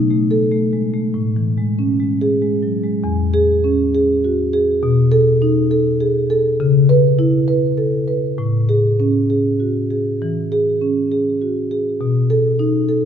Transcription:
Already playing: B2 D#4
0.10 A3
0.31 A4
0.52 A3
0.73 G#3
0.94 A3
1.14 A2
1.36 E3
1.58 G#3
1.79 C#4
2.00 G#3
2.21 G#4
2.42 G#3
2.63 F#3
2.84 G#3
3.04 E2
3.34 G#4
3.64 C#4
3.95 G#4
4.24 F#4
4.53 G#4
4.83 B2
5.12 A4
5.42 D#4
5.71 A4
6.00 G#4
6.30 A4
6.60 C#3
6.89 B4
7.19 E4
7.48 B4
7.77 A4
8.08 B4
8.38 A2
8.69 G#4
9.00 C#4
9.30 G#4
9.60 F#4
9.90 G#4
10.22 E3
10.52 G#4
10.82 C#4
11.12 G#4
11.42 F#4
11.71 G#4
12.01 B2
12.30 A4
12.59 D#4
12.89 A4

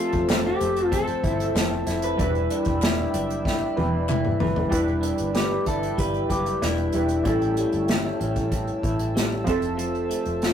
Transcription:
Already playing: F3 C4 F4 A4 C5 E5 A5 E6
0.00 A3
0.13 F1, kick, closed hi-hat
0.29 C4 F4, snare, clap, closed hi-hat
0.46 G4
0.61 F1 A3, closed hi-hat
0.76 closed hi-hat
0.92 C4 A4, kick, closed hi-hat
1.07 closed hi-hat
1.24 G1 E4, kick, closed hi-hat
1.40 closed hi-hat
1.55 F1 C4, snare, clap, closed hi-hat
1.87 F1 E4, snare, closed hi-hat
2.02 B4, closed hi-hat
2.17 E1 E3 G3 D4 E4 D5 G5 B5 E6, kick, closed hi-hat
2.22 B4
2.35 closed hi-hat
2.50 D4, closed hi-hat
2.65 E1, kick, closed hi-hat
2.82 E4, snare, clap, closed hi-hat
3.14 F#1 D4, closed hi-hat
3.30 closed hi-hat
3.45 E4, kick, snare
3.77 E1 B4, high tom
4.09 E4, clap, mid tom
4.25 mid tom
4.40 F#1 B4, floor tom
4.56 floor tom
4.69 E1 E3 G3 D4 E4 D5 B5 E6, kick, closed hi-hat
4.73 B4 G5
4.88 closed hi-hat
5.01 D4, closed hi-hat
5.18 G1, closed hi-hat
5.35 G4 B4, snare, closed hi-hat
5.66 G1 E4 A4, kick, closed hi-hat
5.83 closed hi-hat
5.97 G1 G3 B4, kick, closed hi-hat
6.14 closed hi-hat
6.30 F#1 G4 B4, kick, closed hi-hat
6.46 closed hi-hat
6.62 E1 D4 E4, snare, closed hi-hat
6.77 closed hi-hat
6.92 E1 G3 D4 E4 B4, closed hi-hat
7.09 closed hi-hat
7.23 A1 A2 G3 C#4 E4 C#5 A5, kick, closed hi-hat
7.29 A4
7.42 closed hi-hat
7.57 G3, closed hi-hat
7.73 G1, closed hi-hat
7.88 E4, snare, closed hi-hat
8.20 A1 C#4, closed hi-hat
8.36 kick, closed hi-hat
8.52 E3, kick, closed hi-hat
8.67 closed hi-hat
8.83 A1 E4, kick, closed hi-hat
8.99 closed hi-hat
9.15 G3, snare, closed hi-hat
9.44 F1 F3 C4 C5 E5, kick, closed hi-hat
9.49 A4
9.62 closed hi-hat
9.78 F3, closed hi-hat
9.95 closed hi-hat
10.09 A3, closed hi-hat
10.25 F1, closed hi-hat
10.42 F4, snare, closed hi-hat

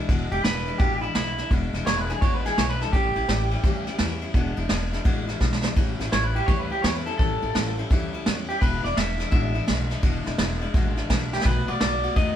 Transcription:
0.09 E1 E2 B2 E3 G#3 D4 E4, kick, ride
0.31 E1 E3 G#3 D4 E4 G4, ride
0.43 E1 E3 G#3 D4 E4 B4, snare, ride
0.67 E3 G#3 D4 E4, ride
0.78 A1 E2 B2 E3 G#3 D4 E4 G4, kick, ride
1.01 E3 G#3 D4 E4, ride
1.15 B1 E3 G#3 D4 E4, snare, ride
1.38 E3 G#3 D4 E4, snare, ride
1.51 E1 E2 B2 E3 G#3 D4 E4, kick, ride
1.73 E1 E3 G#3 D4 E4, snare, ride
1.85 E1 E3 G#3 D4 C#5, snare, ride
1.98 B4
2.09 E3 G#3 D4 E4 G#4, snare, ride
2.21 A1 E2 B2 E3 G#3 D4 E4 C#5, kick, ride
2.34 B4
2.45 E3 G#3 D4 E4 G#4, snare, ride
2.56 B1 E3 G#3 D4 E4 C#5, snare, ride
2.70 B4
2.80 E3 G#3 D4 E4 A4, snare, ride
2.92 A1 A2 E3 G3 C#4 E4 G4, kick, ride
3.15 A1 G3 C#4 E4, ride
3.28 A1 E3 G3 C#4 E4, snare, ride
3.51 G3 C#4 E4, ride
3.63 D2 A2 E3 G3 C#4 E4, kick, ride
3.87 G3 C#4 E4, snare, ride
3.99 E2 E3 G3 C#4, snare, ride
4.03 E4
4.22 G3 C#4 E4, ride
4.34 E1 E2 B2 E3 G#3 D4 E4, kick, ride
4.56 E1 G#3 D4 E4, ride
4.61 E3
4.69 E1 E3 G#3 D4, snare, ride
4.74 E4
4.92 G#3 D4 E4, snare, ride
4.96 E3
5.04 A1 E2 B2 E3 G#3 D4 E4, kick, ride
5.28 E3 G#3 D4 E4, snare, ride
5.40 B1 E3 G#3 D4 E4, kick, snare
5.52 snare
5.63 E3 G#3 D4 E4, snare
5.76 A1 A2 E3 G3 C#4 E4, kick, ride
5.99 A1 G3 C#4 E4, snare, ride
6.11 A1 E3 G3 C#4 C#5, snare, ride
6.24 B4
6.34 G3 C#4 E4 G4, ride
6.46 D2 A2 E3 G3 C#4 E4 C#5, kick, ride
6.59 B4
6.70 G3 C#4 E4 G4, ride
6.82 E2 E3 G3 C#4 C#5, snare, ride
6.94 B4
7.06 G3 C#4 E4 A4, ride
7.18 A1 A2 E3 G3 C#4 A4, kick, ride
7.22 E4
7.42 A1 G3 C#4 E4, ride
7.55 A1 E3 G3 C#4 E4, snare, ride
7.78 G3 C#4 E4, ride
7.90 D2 A2 E3 G3 C#4 E4, kick, ride
8.13 G3 C#4 E4, ride
8.26 E2 E3 G3 C#4 E4, snare, ride
8.48 G3 C#4 E4 G4, ride
8.61 E1 E2 B2 E3 G#3 D4 E4 B4, kick, ride
8.83 E1 E3 G#3 D4 E4 D5, snare, ride
8.96 E1 E3 G#3 D4 E4 E5, snare, ride
9.18 E3 G#3 D4 E4, snare, ride
9.31 A1 E2 B2 E3 G#3 D4 E4 E5, kick, ride
9.54 E3 G#3 D4 E4, ride
9.67 B1 E3 G#3 D4 E4, snare, ride
9.90 E3 G#3 D4 E4, snare, ride
10.03 E1 E2 B2 E3 G#3 D4 E4, kick, ride
10.24 E1 E3 G#3 D4 E4, snare, ride
10.38 E1 E3 G#3 D4 E4, snare, ride
10.61 E3 G#3 D4 E4, ride
10.74 A1 E2 B2 E3 G#3 D4 E4, kick, ride
10.97 E3 G#3 D4 E4, snare, ride
11.09 B1 E3 G#3 D4 E4, kick, snare, ride
11.33 E3 G#3 D4 E4 G4, snare
11.41 B1 B4, snare, ride
11.45 B2 D#3 A3 B3 F#4, kick
11.68 B1 A3 B3 F#4 D5, ride
11.80 B1 D#3 A3 B3 D5, snare, ride
11.85 F#4
12.03 B3 F#4, ride
12.07 A3
12.16 E2 B2 D#3 A3 B3 F#4 D#5, kick, ride

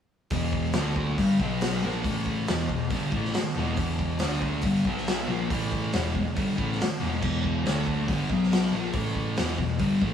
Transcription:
0.30 E1 E2 B2 E3, kick, open hi-hat
0.53 kick
0.73 D2 D3, snare, open hi-hat
0.77 A3 D4
0.96 kick
1.18 G1 G2 D3 G3, kick, open hi-hat
1.40 B1 B2 F#3 B3, kick
1.61 snare, open hi-hat
1.83 A#1 A#2 F3 A#3
2.04 A1 A2 E3 A3, kick, open hi-hat
2.26 kick
2.47 E1 E2 B2 E3, snare, open hi-hat
2.69 E1 E2 B2, kick
2.90 G1 G2 D3 G3, kick, open hi-hat
3.12 A1 A2 E3 A3, kick
3.25 snare
3.34 muted picked electric bass stroke, muted distorted electric guitar stroke, snare, open hi-hat
3.56 E1 E2 B2 E3
3.77 E1 E2 B2 E3, kick, open hi-hat
3.99 kick
4.19 D2 D3, snare, open hi-hat
4.24 A3 D4
4.42 kick
4.61 G1 G2, kick, open hi-hat
4.66 D3 G3
4.85 B1 B2 F#3 B3, kick
4.98 snare
5.07 snare, open hi-hat
5.28 A#1 A#2 F3 A#3
5.50 A1 A2 E3 A3, kick, open hi-hat
5.72 kick
5.93 E1 E2 B2 E3, snare, open hi-hat
6.15 E1 E2 B2, kick
6.36 G1 G2 D3 G3, kick, open hi-hat
6.57 A1 A2 E3 A3, kick
6.72 snare
6.79 muted distorted electric guitar stroke, muted picked electric bass stroke, snare, open hi-hat
7.00 E1 E2 B2 E3
7.22 E1 E2 B2 E3, kick, crash
7.44 kick
7.64 D2 D3 A3 D4, snare, open hi-hat
7.87 kick
8.08 G1 G2 D3 G3, kick, open hi-hat
8.30 B1 B2 F#3 B3, kick
8.43 snare
8.52 snare, open hi-hat
8.73 A#1 A#2 F3 A#3
8.93 A1 A2 E3 A3, kick, open hi-hat
9.15 kick
9.37 E1 E2 B2 E3, snare, open hi-hat
9.58 E1 E2 B2, kick
9.79 G1 G2 D3 G3, kick, open hi-hat
10.01 A1 A2 E3 A3, kick

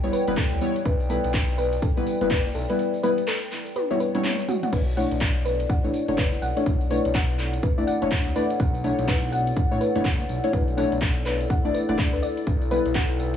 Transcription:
Already playing: D5 G5
0.03 F#1 G3 B3 E4 C#5, tambourine
0.13 B4, open hi-hat, tambourine
0.28 F#1 G3 B3 E4 B4, closed hi-hat, tambourine
0.37 A4, kick, clap, closed hi-hat, tambourine
0.52 D2, tambourine
0.61 G3 B3 E4 C#5, open hi-hat, tambourine
0.76 closed hi-hat, tambourine
0.86 B1 B4, kick, closed hi-hat, tambourine
1.00 open hi-hat, tambourine
1.10 G3 B3 E4 A4 B4, open hi-hat, tambourine
1.24 B1, closed hi-hat, tambourine
1.34 kick, clap, closed hi-hat, tambourine
1.49 tambourine
1.58 B4, open hi-hat, tambourine
1.73 closed hi-hat, tambourine
1.82 A4, kick, closed hi-hat, tambourine
1.97 A1 G3 B3 E4 B4, tambourine
2.07 open hi-hat, tambourine
2.21 F#1 G3 B3 E4 B4, closed hi-hat, tambourine
2.31 B4, kick, clap, closed hi-hat, tambourine
2.46 tambourine
2.55 B1 A4, open hi-hat, tambourine
2.70 G3 B3 E4 B4, closed hi-hat, tambourine
2.79 closed hi-hat, tambourine
2.94 open hi-hat, tambourine
3.03 G3 B3 E4 B4, open hi-hat, tambourine
3.18 closed hi-hat, tambourine
3.28 A4, clap, closed hi-hat, tambourine
3.42 tambourine
3.52 clap, open hi-hat, tambourine
3.66 closed hi-hat, tambourine
3.76 B4, closed hi-hat, high tom, tambourine
3.91 G3 B3 E4 C#5, high tom, tambourine
4.00 B4, open hi-hat, tambourine
4.15 G3 B3 E4 C#5, closed hi-hat, mid tom, tambourine
4.24 clap, closed hi-hat, mid tom, tambourine
4.39 tambourine
4.49 F#4, mid tom, open hi-hat, tambourine
4.63 F#5, closed hi-hat, mid tom, tambourine
4.73 B1 E4 B4, kick, closed hi-hat, crash, tambourine
4.87 A4, open hi-hat, tambourine
4.97 A3 D4 E4 C#5 F#5, open hi-hat, tambourine
5.12 B1, closed hi-hat, tambourine
5.21 kick, clap, closed hi-hat, tambourine
5.36 F#5, tambourine
5.45 B4, open hi-hat, tambourine
5.60 closed hi-hat, tambourine
5.69 F#5, kick, closed hi-hat, tambourine
5.84 A1 A3 D4 E4 C#5, tambourine
5.94 open hi-hat, tambourine
6.08 F#1 A3 D4 E4 C#5, closed hi-hat, tambourine
6.18 B4, kick, clap, closed hi-hat, tambourine
6.33 tambourine
6.42 B1 F#5, open hi-hat, tambourine
6.57 A3 D4 E4 C#5, closed hi-hat, tambourine
6.66 B1, kick, closed hi-hat, tambourine
6.81 open hi-hat, tambourine
6.90 A3 D4 E4 B4 C#5, open hi-hat, tambourine
7.05 B1, closed hi-hat, tambourine
7.15 F#5, kick, clap, closed hi-hat, tambourine
7.30 tambourine
7.39 clap, open hi-hat, tambourine
7.53 closed hi-hat, tambourine
7.63 B4, kick, closed hi-hat, tambourine
7.78 F#1 A3 D4 E4 D5, tambourine
7.87 F#5, open hi-hat, tambourine
8.02 F#1 A3 D4 E4 C#5, closed hi-hat, tambourine
8.11 kick, clap, closed hi-hat, tambourine
8.26 D2, tambourine
8.36 A3 D4 E4 B4 D5, open hi-hat, tambourine
8.50 closed hi-hat, tambourine
8.60 B1 F#5, kick, closed hi-hat, tambourine
8.75 open hi-hat, tambourine
8.84 A3 D4 E4 C#5, open hi-hat, tambourine
8.99 B1, closed hi-hat, tambourine
9.08 B4, kick, clap, closed hi-hat, tambourine
9.23 tambourine
9.32 F#5, open hi-hat, tambourine
9.47 closed hi-hat, tambourine
9.57 kick, closed hi-hat, tambourine
9.71 A1 A3 D4 E4 C#5, tambourine
9.81 B4, open hi-hat, tambourine
9.95 F#1 A3 D4 E4 C#5, closed hi-hat, tambourine
10.05 F#5, kick, clap, closed hi-hat, tambourine
10.20 tambourine
10.29 B1, open hi-hat, tambourine
10.44 A3 D4 E4 C#5, closed hi-hat, tambourine
10.53 B1 B4, kick, closed hi-hat, tambourine
10.68 open hi-hat, tambourine
10.77 A3 D4 E4 C#5 F#5, open hi-hat, tambourine
10.92 B1, closed hi-hat, tambourine
11.02 kick, clap, closed hi-hat, tambourine
11.17 tambourine
11.26 B4, clap, open hi-hat, tambourine
11.40 closed hi-hat, tambourine
11.50 F#5, kick, closed hi-hat, tambourine
11.65 F#1 A3 D4 E4 D5, tambourine
11.74 B4, open hi-hat, tambourine
11.89 F#1 A3 D4 E4 D5 F#5, closed hi-hat, tambourine
11.98 B5, kick, clap, closed hi-hat, tambourine
12.13 D2 B4, tambourine
12.23 D5, open hi-hat, tambourine
12.37 closed hi-hat, tambourine
12.47 B1, kick, closed hi-hat, tambourine
12.62 open hi-hat, tambourine
12.71 G3 B3 E4 B4, open hi-hat, tambourine
12.80 G5
12.86 B1, closed hi-hat, tambourine
12.95 F#5, kick, clap, closed hi-hat, tambourine
13.10 tambourine
13.19 open hi-hat, tambourine

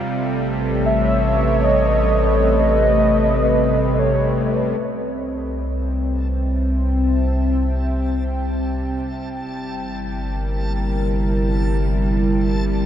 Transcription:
Already playing: C3 G3 F4
0.06 A1 A3
0.14 A4
0.44 B4
0.64 C#5
0.85 E5
1.64 D#5
2.42 D#5
3.99 C#5
4.79 C2 C3 G3 C4 A5
5.04 C5 G5
5.71 E5
9.45 G1 G3
9.55 E4
10.23 A#4

